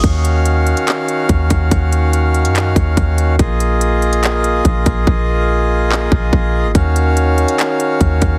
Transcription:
<<
  \new Staff \with { instrumentName = "Accordion" } { \time 4/4 \key ees \minor \tempo 4 = 143 <ees des' ges' f''>1~ | <ees des' ges' f''>1 | <bes f' aes' ees''>1~ | <bes f' aes' ees''>1 |
<ees des' ges' f''>1 | }
  \new Staff \with { instrumentName = "808-style bass" } { \clef bass \time 4/4 \key ees \minor ees,4.~ ees,16 r4 r16 ees,8 ees,8 | ees,4.~ ees,16 ges,8. ees,8 ees,4 | bes,,2. bes,,8 bes,,8 | bes,,2~ bes,,8 bes,,8 bes,,8. aes,,16 |
ees,4.~ ees,16 r4 r16 ees,8 ees,8 | }
  \new DrumStaff \with { instrumentName = "Drums" } \drummode { \time 4/4 <hh bd>8 hh8 hh8 hh16 hh16 <hc hh>8 hh8 <hh bd>8 <hh bd>8 | <hh bd>8 hh8 hh8 hh16 hh16 <hc hh>8 <hh bd>8 <hh bd>8 hh8 | <hh bd>8 hh8 hh8 hh16 hh16 <hc hh>8 hh8 <hh bd>8 <hh bd>8 | bd4 r4 hc8 bd8 bd4 |
<hh bd>8 hh8 hh8 hh16 hh16 <hc hh>8 hh8 <hh bd>8 <hh bd>8 | }
>>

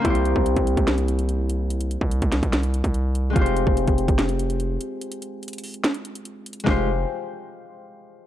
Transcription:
<<
  \new Staff \with { instrumentName = "Harp" } { \time 4/4 \key f \minor \tempo 4 = 145 <bes c' e' g' c''>1~ | <bes c' e' g' c''>1 | <aes c' f' g' c''>1~ | <aes c' f' g' c''>1 |
<aes f' g' c''>8 r2. r8 | }
  \new Staff \with { instrumentName = "808-style bass" } { \clef bass \time 4/4 \key f \minor c,8. c,8 c,8 c,2~ c,16~ | c,8. c,8 c,8 c,4 c,4~ c,16 | f,,8. f,,8 f,,8 f,,4.~ f,,16 r8 | r1 |
f,,4 r2. | }
  \new DrumStaff \with { instrumentName = "Drums" } \drummode { \time 4/4 <hh bd>16 hh16 hh16 bd16 hh16 <hh bd>16 hh16 <hh bd>16 <hh sn>16 hh16 hh16 hh16 hh8 hh8 | hh16 hh16 hh16 bd16 hh16 <hh bd>16 <hh sn>16 <hh bd>16 <hh sn>16 hh16 hh16 <hh bd>16 hh8 hh8 | <hh bd>16 hh16 hh16 bd16 hh16 <hh bd>16 hh16 <hh bd>16 <hh sn>16 hh16 hh16 hh16 hh8 hh8 | hh16 hh16 hh8 hh32 hh32 hh32 hh32 hho16 hh16 <hh sn>16 hh16 hh16 hh16 \tuplet 3/2 { hh16 r16 r16 hh16 hh16 hh16 } |
<bd sn>4 r4 r4 r4 | }
>>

